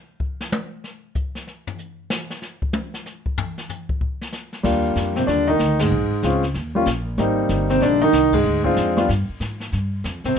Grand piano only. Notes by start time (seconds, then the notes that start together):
4.63 G3 A#3 D4 F4
5.16 C3 C4
5.27 D3 D4
5.48 D#3 D#4
5.80 G#2 G#3
6.23 G#3 C4 C#4 F4
6.75 G3 A#3 C#4 F4
7.18 G3 A#3 C4 D#4
7.70 C3 C4
7.82 D3 D4
8.02 D#3 D#4
8.34 G#2 G#3
8.64 G#3 C4 D4 F4
8.97 G3 B3 D4 F4
10.25 C3 C4